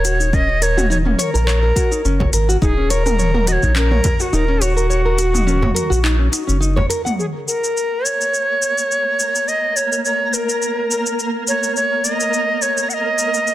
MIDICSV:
0, 0, Header, 1, 7, 480
1, 0, Start_track
1, 0, Key_signature, -6, "minor"
1, 0, Tempo, 571429
1, 280, Time_signature, 4, 2, 24, 8
1, 11377, End_track
2, 0, Start_track
2, 0, Title_t, "Native American-style wooden flute"
2, 0, Program_c, 0, 77
2, 0, Note_on_c, 0, 73, 118
2, 286, Note_on_c, 0, 75, 116
2, 299, Note_off_c, 0, 73, 0
2, 527, Note_on_c, 0, 73, 108
2, 539, Note_off_c, 0, 75, 0
2, 758, Note_off_c, 0, 73, 0
2, 763, Note_on_c, 0, 73, 108
2, 817, Note_off_c, 0, 73, 0
2, 1012, Note_on_c, 0, 70, 104
2, 1932, Note_off_c, 0, 70, 0
2, 2197, Note_on_c, 0, 68, 96
2, 2435, Note_on_c, 0, 70, 112
2, 2448, Note_off_c, 0, 68, 0
2, 2921, Note_on_c, 0, 75, 101
2, 2934, Note_off_c, 0, 70, 0
2, 2960, Note_on_c, 0, 73, 109
2, 2968, Note_off_c, 0, 75, 0
2, 3160, Note_off_c, 0, 73, 0
2, 3167, Note_on_c, 0, 70, 107
2, 3537, Note_on_c, 0, 66, 93
2, 3550, Note_off_c, 0, 70, 0
2, 3651, Note_on_c, 0, 70, 103
2, 3664, Note_off_c, 0, 66, 0
2, 3885, Note_on_c, 0, 66, 101
2, 3898, Note_off_c, 0, 70, 0
2, 5562, Note_off_c, 0, 66, 0
2, 6039, Note_on_c, 0, 68, 74
2, 6093, Note_off_c, 0, 68, 0
2, 6274, Note_on_c, 0, 70, 81
2, 6761, Note_on_c, 0, 73, 100
2, 6774, Note_off_c, 0, 70, 0
2, 7964, Note_on_c, 0, 75, 97
2, 7977, Note_off_c, 0, 73, 0
2, 8200, Note_on_c, 0, 73, 91
2, 8213, Note_off_c, 0, 75, 0
2, 8427, Note_off_c, 0, 73, 0
2, 8432, Note_on_c, 0, 73, 95
2, 8683, Note_on_c, 0, 70, 83
2, 8696, Note_off_c, 0, 73, 0
2, 9416, Note_off_c, 0, 70, 0
2, 9645, Note_on_c, 0, 73, 90
2, 9866, Note_off_c, 0, 73, 0
2, 9877, Note_on_c, 0, 73, 97
2, 10119, Note_on_c, 0, 75, 104
2, 10131, Note_off_c, 0, 73, 0
2, 10601, Note_on_c, 0, 73, 89
2, 10613, Note_off_c, 0, 75, 0
2, 10827, Note_on_c, 0, 78, 93
2, 10839, Note_off_c, 0, 73, 0
2, 10867, Note_on_c, 0, 75, 102
2, 10876, Note_off_c, 0, 78, 0
2, 11377, Note_off_c, 0, 75, 0
2, 11377, End_track
3, 0, Start_track
3, 0, Title_t, "Nylon-string guitar"
3, 0, Program_c, 1, 24
3, 39, Note_on_c, 1, 66, 77
3, 156, Note_off_c, 1, 66, 0
3, 167, Note_on_c, 1, 63, 75
3, 267, Note_off_c, 1, 63, 0
3, 278, Note_on_c, 1, 61, 87
3, 396, Note_off_c, 1, 61, 0
3, 412, Note_on_c, 1, 73, 74
3, 515, Note_off_c, 1, 73, 0
3, 518, Note_on_c, 1, 70, 71
3, 636, Note_off_c, 1, 70, 0
3, 650, Note_on_c, 1, 66, 95
3, 712, Note_off_c, 1, 66, 0
3, 757, Note_on_c, 1, 63, 109
3, 880, Note_off_c, 1, 63, 0
3, 883, Note_on_c, 1, 61, 73
3, 985, Note_off_c, 1, 61, 0
3, 996, Note_on_c, 1, 73, 101
3, 1121, Note_off_c, 1, 73, 0
3, 1126, Note_on_c, 1, 70, 75
3, 1232, Note_off_c, 1, 70, 0
3, 1236, Note_on_c, 1, 73, 78
3, 1355, Note_off_c, 1, 73, 0
3, 1367, Note_on_c, 1, 70, 78
3, 1473, Note_off_c, 1, 70, 0
3, 1477, Note_on_c, 1, 66, 76
3, 1595, Note_off_c, 1, 66, 0
3, 1609, Note_on_c, 1, 63, 79
3, 1708, Note_off_c, 1, 63, 0
3, 1723, Note_on_c, 1, 61, 85
3, 1838, Note_off_c, 1, 61, 0
3, 1848, Note_on_c, 1, 73, 81
3, 1953, Note_off_c, 1, 73, 0
3, 1962, Note_on_c, 1, 70, 80
3, 2077, Note_off_c, 1, 70, 0
3, 2090, Note_on_c, 1, 66, 97
3, 2152, Note_off_c, 1, 66, 0
3, 2201, Note_on_c, 1, 63, 109
3, 2324, Note_off_c, 1, 63, 0
3, 2331, Note_on_c, 1, 61, 75
3, 2429, Note_off_c, 1, 61, 0
3, 2440, Note_on_c, 1, 73, 92
3, 2563, Note_off_c, 1, 73, 0
3, 2572, Note_on_c, 1, 70, 74
3, 2675, Note_off_c, 1, 70, 0
3, 2681, Note_on_c, 1, 73, 88
3, 2797, Note_off_c, 1, 73, 0
3, 2811, Note_on_c, 1, 70, 76
3, 2915, Note_off_c, 1, 70, 0
3, 2921, Note_on_c, 1, 66, 79
3, 3037, Note_off_c, 1, 66, 0
3, 3052, Note_on_c, 1, 63, 80
3, 3150, Note_off_c, 1, 63, 0
3, 3154, Note_on_c, 1, 61, 87
3, 3274, Note_off_c, 1, 61, 0
3, 3288, Note_on_c, 1, 73, 78
3, 3393, Note_off_c, 1, 73, 0
3, 3396, Note_on_c, 1, 70, 78
3, 3515, Note_off_c, 1, 70, 0
3, 3526, Note_on_c, 1, 66, 104
3, 3591, Note_off_c, 1, 66, 0
3, 3637, Note_on_c, 1, 63, 101
3, 3761, Note_off_c, 1, 63, 0
3, 3766, Note_on_c, 1, 61, 80
3, 3867, Note_off_c, 1, 61, 0
3, 3879, Note_on_c, 1, 73, 100
3, 4000, Note_off_c, 1, 73, 0
3, 4003, Note_on_c, 1, 70, 69
3, 4111, Note_off_c, 1, 70, 0
3, 4115, Note_on_c, 1, 73, 92
3, 4234, Note_off_c, 1, 73, 0
3, 4246, Note_on_c, 1, 70, 72
3, 4352, Note_off_c, 1, 70, 0
3, 4354, Note_on_c, 1, 66, 80
3, 4474, Note_off_c, 1, 66, 0
3, 4481, Note_on_c, 1, 63, 75
3, 4584, Note_off_c, 1, 63, 0
3, 4594, Note_on_c, 1, 61, 85
3, 4713, Note_off_c, 1, 61, 0
3, 4722, Note_on_c, 1, 73, 73
3, 4823, Note_off_c, 1, 73, 0
3, 4827, Note_on_c, 1, 70, 74
3, 4950, Note_off_c, 1, 70, 0
3, 4956, Note_on_c, 1, 66, 101
3, 5025, Note_off_c, 1, 66, 0
3, 5071, Note_on_c, 1, 63, 107
3, 5199, Note_off_c, 1, 63, 0
3, 5202, Note_on_c, 1, 61, 74
3, 5304, Note_off_c, 1, 61, 0
3, 5307, Note_on_c, 1, 63, 78
3, 5430, Note_off_c, 1, 63, 0
3, 5438, Note_on_c, 1, 61, 84
3, 5545, Note_off_c, 1, 61, 0
3, 5549, Note_on_c, 1, 63, 104
3, 5678, Note_off_c, 1, 63, 0
3, 5682, Note_on_c, 1, 73, 80
3, 5785, Note_off_c, 1, 73, 0
3, 5793, Note_on_c, 1, 70, 82
3, 5913, Note_off_c, 1, 70, 0
3, 5922, Note_on_c, 1, 78, 75
3, 5988, Note_off_c, 1, 78, 0
3, 11377, End_track
4, 0, Start_track
4, 0, Title_t, "Synth texture"
4, 0, Program_c, 2, 99
4, 6044, Note_on_c, 2, 58, 86
4, 6047, Note_on_c, 2, 70, 87
4, 11377, Note_off_c, 2, 58, 0
4, 11377, Note_off_c, 2, 70, 0
4, 11377, End_track
5, 0, Start_track
5, 0, Title_t, "Analog synth bass"
5, 0, Program_c, 3, 38
5, 0, Note_on_c, 3, 27, 100
5, 962, Note_off_c, 3, 27, 0
5, 1132, Note_on_c, 3, 34, 101
5, 1443, Note_off_c, 3, 34, 0
5, 1723, Note_on_c, 3, 30, 100
5, 1914, Note_off_c, 3, 30, 0
5, 1962, Note_on_c, 3, 32, 92
5, 2154, Note_off_c, 3, 32, 0
5, 2204, Note_on_c, 3, 27, 100
5, 3007, Note_off_c, 3, 27, 0
5, 3050, Note_on_c, 3, 34, 96
5, 3362, Note_off_c, 3, 34, 0
5, 3639, Note_on_c, 3, 27, 96
5, 4802, Note_off_c, 3, 27, 0
5, 4965, Note_on_c, 3, 34, 98
5, 5280, Note_off_c, 3, 34, 0
5, 5450, Note_on_c, 3, 30, 88
5, 5762, Note_off_c, 3, 30, 0
5, 11377, End_track
6, 0, Start_track
6, 0, Title_t, "Frame drum"
6, 1856, Note_on_c, 9, 64, 88
6, 1940, Note_off_c, 9, 64, 0
6, 3400, Note_on_c, 9, 64, 88
6, 3484, Note_off_c, 9, 64, 0
6, 4726, Note_on_c, 9, 64, 86
6, 4810, Note_off_c, 9, 64, 0
6, 5689, Note_on_c, 9, 64, 83
6, 5773, Note_off_c, 9, 64, 0
6, 11377, End_track
7, 0, Start_track
7, 0, Title_t, "Drums"
7, 40, Note_on_c, 9, 42, 92
7, 44, Note_on_c, 9, 82, 82
7, 124, Note_off_c, 9, 42, 0
7, 128, Note_off_c, 9, 82, 0
7, 172, Note_on_c, 9, 82, 44
7, 256, Note_off_c, 9, 82, 0
7, 279, Note_on_c, 9, 36, 115
7, 282, Note_on_c, 9, 82, 31
7, 363, Note_off_c, 9, 36, 0
7, 366, Note_off_c, 9, 82, 0
7, 521, Note_on_c, 9, 42, 93
7, 525, Note_on_c, 9, 82, 82
7, 605, Note_off_c, 9, 42, 0
7, 609, Note_off_c, 9, 82, 0
7, 654, Note_on_c, 9, 45, 85
7, 658, Note_on_c, 9, 82, 44
7, 738, Note_off_c, 9, 45, 0
7, 742, Note_off_c, 9, 82, 0
7, 767, Note_on_c, 9, 82, 34
7, 851, Note_off_c, 9, 82, 0
7, 893, Note_on_c, 9, 45, 80
7, 977, Note_off_c, 9, 45, 0
7, 1002, Note_on_c, 9, 42, 91
7, 1005, Note_on_c, 9, 82, 83
7, 1086, Note_off_c, 9, 42, 0
7, 1089, Note_off_c, 9, 82, 0
7, 1135, Note_on_c, 9, 82, 40
7, 1219, Note_off_c, 9, 82, 0
7, 1243, Note_on_c, 9, 39, 75
7, 1247, Note_on_c, 9, 82, 32
7, 1327, Note_off_c, 9, 39, 0
7, 1331, Note_off_c, 9, 82, 0
7, 1480, Note_on_c, 9, 36, 102
7, 1483, Note_on_c, 9, 42, 89
7, 1486, Note_on_c, 9, 82, 72
7, 1564, Note_off_c, 9, 36, 0
7, 1567, Note_off_c, 9, 42, 0
7, 1570, Note_off_c, 9, 82, 0
7, 1613, Note_on_c, 9, 82, 45
7, 1697, Note_off_c, 9, 82, 0
7, 1724, Note_on_c, 9, 82, 35
7, 1808, Note_off_c, 9, 82, 0
7, 1851, Note_on_c, 9, 36, 101
7, 1935, Note_off_c, 9, 36, 0
7, 1958, Note_on_c, 9, 42, 94
7, 1961, Note_on_c, 9, 82, 79
7, 2042, Note_off_c, 9, 42, 0
7, 2045, Note_off_c, 9, 82, 0
7, 2096, Note_on_c, 9, 82, 41
7, 2180, Note_off_c, 9, 82, 0
7, 2200, Note_on_c, 9, 36, 118
7, 2204, Note_on_c, 9, 82, 31
7, 2284, Note_off_c, 9, 36, 0
7, 2288, Note_off_c, 9, 82, 0
7, 2439, Note_on_c, 9, 42, 94
7, 2443, Note_on_c, 9, 82, 76
7, 2523, Note_off_c, 9, 42, 0
7, 2527, Note_off_c, 9, 82, 0
7, 2570, Note_on_c, 9, 45, 88
7, 2574, Note_on_c, 9, 82, 44
7, 2654, Note_off_c, 9, 45, 0
7, 2658, Note_off_c, 9, 82, 0
7, 2681, Note_on_c, 9, 82, 34
7, 2765, Note_off_c, 9, 82, 0
7, 2808, Note_on_c, 9, 45, 77
7, 2892, Note_off_c, 9, 45, 0
7, 2917, Note_on_c, 9, 42, 93
7, 2921, Note_on_c, 9, 82, 79
7, 3001, Note_off_c, 9, 42, 0
7, 3005, Note_off_c, 9, 82, 0
7, 3049, Note_on_c, 9, 36, 55
7, 3049, Note_on_c, 9, 82, 41
7, 3133, Note_off_c, 9, 36, 0
7, 3133, Note_off_c, 9, 82, 0
7, 3156, Note_on_c, 9, 39, 78
7, 3159, Note_on_c, 9, 82, 31
7, 3240, Note_off_c, 9, 39, 0
7, 3243, Note_off_c, 9, 82, 0
7, 3284, Note_on_c, 9, 45, 63
7, 3368, Note_off_c, 9, 45, 0
7, 3393, Note_on_c, 9, 42, 90
7, 3397, Note_on_c, 9, 82, 73
7, 3398, Note_on_c, 9, 36, 101
7, 3477, Note_off_c, 9, 42, 0
7, 3481, Note_off_c, 9, 82, 0
7, 3482, Note_off_c, 9, 36, 0
7, 3527, Note_on_c, 9, 82, 44
7, 3611, Note_off_c, 9, 82, 0
7, 3640, Note_on_c, 9, 82, 35
7, 3724, Note_off_c, 9, 82, 0
7, 3877, Note_on_c, 9, 42, 96
7, 3881, Note_on_c, 9, 82, 78
7, 3961, Note_off_c, 9, 42, 0
7, 3965, Note_off_c, 9, 82, 0
7, 4010, Note_on_c, 9, 82, 43
7, 4094, Note_off_c, 9, 82, 0
7, 4122, Note_on_c, 9, 82, 30
7, 4206, Note_off_c, 9, 82, 0
7, 4355, Note_on_c, 9, 42, 97
7, 4359, Note_on_c, 9, 82, 76
7, 4439, Note_off_c, 9, 42, 0
7, 4443, Note_off_c, 9, 82, 0
7, 4491, Note_on_c, 9, 45, 81
7, 4494, Note_on_c, 9, 82, 46
7, 4575, Note_off_c, 9, 45, 0
7, 4578, Note_off_c, 9, 82, 0
7, 4604, Note_on_c, 9, 82, 33
7, 4688, Note_off_c, 9, 82, 0
7, 4731, Note_on_c, 9, 45, 81
7, 4815, Note_off_c, 9, 45, 0
7, 4841, Note_on_c, 9, 42, 98
7, 4845, Note_on_c, 9, 82, 76
7, 4925, Note_off_c, 9, 42, 0
7, 4929, Note_off_c, 9, 82, 0
7, 4976, Note_on_c, 9, 82, 44
7, 5060, Note_off_c, 9, 82, 0
7, 5080, Note_on_c, 9, 39, 77
7, 5083, Note_on_c, 9, 82, 35
7, 5164, Note_off_c, 9, 39, 0
7, 5167, Note_off_c, 9, 82, 0
7, 5317, Note_on_c, 9, 42, 91
7, 5320, Note_on_c, 9, 82, 78
7, 5401, Note_off_c, 9, 42, 0
7, 5404, Note_off_c, 9, 82, 0
7, 5453, Note_on_c, 9, 82, 42
7, 5537, Note_off_c, 9, 82, 0
7, 5563, Note_on_c, 9, 82, 35
7, 5647, Note_off_c, 9, 82, 0
7, 5800, Note_on_c, 9, 42, 98
7, 5803, Note_on_c, 9, 82, 80
7, 5884, Note_off_c, 9, 42, 0
7, 5887, Note_off_c, 9, 82, 0
7, 5933, Note_on_c, 9, 45, 61
7, 5936, Note_on_c, 9, 82, 42
7, 6017, Note_off_c, 9, 45, 0
7, 6020, Note_off_c, 9, 82, 0
7, 6048, Note_on_c, 9, 82, 26
7, 6132, Note_off_c, 9, 82, 0
7, 6287, Note_on_c, 9, 82, 65
7, 6371, Note_off_c, 9, 82, 0
7, 6418, Note_on_c, 9, 82, 38
7, 6502, Note_off_c, 9, 82, 0
7, 6529, Note_on_c, 9, 82, 29
7, 6613, Note_off_c, 9, 82, 0
7, 6768, Note_on_c, 9, 82, 66
7, 6852, Note_off_c, 9, 82, 0
7, 6898, Note_on_c, 9, 82, 37
7, 6982, Note_off_c, 9, 82, 0
7, 7007, Note_on_c, 9, 82, 29
7, 7091, Note_off_c, 9, 82, 0
7, 7244, Note_on_c, 9, 82, 66
7, 7328, Note_off_c, 9, 82, 0
7, 7376, Note_on_c, 9, 82, 40
7, 7460, Note_off_c, 9, 82, 0
7, 7489, Note_on_c, 9, 82, 28
7, 7573, Note_off_c, 9, 82, 0
7, 7725, Note_on_c, 9, 82, 71
7, 7809, Note_off_c, 9, 82, 0
7, 7857, Note_on_c, 9, 82, 37
7, 7941, Note_off_c, 9, 82, 0
7, 7966, Note_on_c, 9, 82, 29
7, 8050, Note_off_c, 9, 82, 0
7, 8206, Note_on_c, 9, 82, 72
7, 8290, Note_off_c, 9, 82, 0
7, 8337, Note_on_c, 9, 82, 41
7, 8421, Note_off_c, 9, 82, 0
7, 8445, Note_on_c, 9, 82, 28
7, 8529, Note_off_c, 9, 82, 0
7, 8683, Note_on_c, 9, 82, 70
7, 8767, Note_off_c, 9, 82, 0
7, 8814, Note_on_c, 9, 82, 38
7, 8898, Note_off_c, 9, 82, 0
7, 8923, Note_on_c, 9, 82, 30
7, 9007, Note_off_c, 9, 82, 0
7, 9165, Note_on_c, 9, 82, 69
7, 9249, Note_off_c, 9, 82, 0
7, 9293, Note_on_c, 9, 82, 41
7, 9377, Note_off_c, 9, 82, 0
7, 9403, Note_on_c, 9, 82, 29
7, 9487, Note_off_c, 9, 82, 0
7, 9640, Note_on_c, 9, 82, 76
7, 9724, Note_off_c, 9, 82, 0
7, 9772, Note_on_c, 9, 82, 37
7, 9856, Note_off_c, 9, 82, 0
7, 9883, Note_on_c, 9, 82, 28
7, 9967, Note_off_c, 9, 82, 0
7, 10120, Note_on_c, 9, 82, 74
7, 10204, Note_off_c, 9, 82, 0
7, 10250, Note_on_c, 9, 82, 39
7, 10334, Note_off_c, 9, 82, 0
7, 10362, Note_on_c, 9, 82, 32
7, 10446, Note_off_c, 9, 82, 0
7, 10601, Note_on_c, 9, 82, 73
7, 10685, Note_off_c, 9, 82, 0
7, 10731, Note_on_c, 9, 82, 39
7, 10815, Note_off_c, 9, 82, 0
7, 10838, Note_on_c, 9, 82, 32
7, 10922, Note_off_c, 9, 82, 0
7, 11077, Note_on_c, 9, 82, 71
7, 11161, Note_off_c, 9, 82, 0
7, 11207, Note_on_c, 9, 82, 43
7, 11291, Note_off_c, 9, 82, 0
7, 11317, Note_on_c, 9, 82, 30
7, 11377, Note_off_c, 9, 82, 0
7, 11377, End_track
0, 0, End_of_file